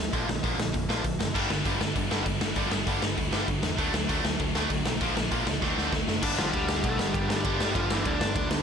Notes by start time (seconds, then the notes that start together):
0.00 D3 F#3 A3
0.13 A#1 A#2 D3 F3 A#3, kick, open hi-hat
0.27 A#1 A#2 D3 F3, snare
0.43 A#1 A#2 D3 F3 A#3, kick, open hi-hat
0.58 A#1 A#2 D3 F3, snare
0.74 F1 A#2 D3 F3, kick, open hi-hat
0.89 A#1 A#2 D3 F3 A#3, snare
1.04 A#1 A#2 D3 F3, kick, open hi-hat
1.19 F#1 A#2 D3 F3, snare
1.35 G1 G2 D3 G3 B3 D4, kick, crash
1.50 G1 G2 D3, snare
1.65 G1 G2 D3 G3, kick, open hi-hat
1.81 G1 G2 D3, snare
1.96 G1 G2 D3, kick, open hi-hat
2.11 G1 G2 D3 G3, snare
2.26 G1 G2 D3, kick, open hi-hat
2.41 G1 G2 D3, snare
2.56 G1 G2 D3 G3 B3 D4, kick, open hi-hat
2.71 G1 G2 D3, snare
2.87 G1 G2 D3 G3, kick, open hi-hat
3.02 G1 G2 D3, snare
3.17 D2 G2 D3, kick, open hi-hat
3.31 G1 G2 D3 G3, snare
3.47 G1 G2 D3, kick, open hi-hat
3.62 E2 G2 D3, snare
3.77 D2 D3 F#3 A3 D4, kick, open hi-hat
3.93 D2 D3 F#3 A3, snare
4.08 D2 D3 F#3 A3 D4, kick, open hi-hat
4.25 D2 D3 F#3 A3, snare
4.40 D2 D3 F#3 A3, kick, open hi-hat
4.55 D2 D3 F#3 A3 D4, snare
4.70 D2 D3 F#3 A3, kick, open hi-hat
4.86 B1 D3 F#3 A3, snare
5.01 A#1 A#2 D3 F3 A#3 D4, kick, open hi-hat
5.16 A#1 A#2 D3 F3, snare
5.31 A#1 A#2 D3 F3 A#3, kick, open hi-hat
5.46 C#2 A#2 D3 F3, snare
5.62 D2 D3 F#3 A3 C4 D4, kick, snare
5.77 D2 D3 A3 C4 D4, snare
5.92 D2 D3 A3, kick, snare
6.08 F#1 D3 A3, snare
6.22 G1 G2 D3 G3 B3 D4 D5, kick, crash
6.38 G1 F3 F4, snare
6.53 D2 G3 G4, kick, ride
6.69 G3 G4, snare
6.84 B1 A3 A4, kick, ride
6.99 G1 G3 G4, snare
7.14 G1 G3 G4, kick, ride
7.30 G1 G3 G4, snare
7.44 G1 G2 D3 G3 B3 D4, kick, ride
7.60 G2, snare
7.75 G1 F3 F4, kick, ride
7.91 E3 E4, snare
8.05 D2 D4 D5, kick, ride
8.20 G1, snare
8.36 D2, kick, ride
8.51 D2, snare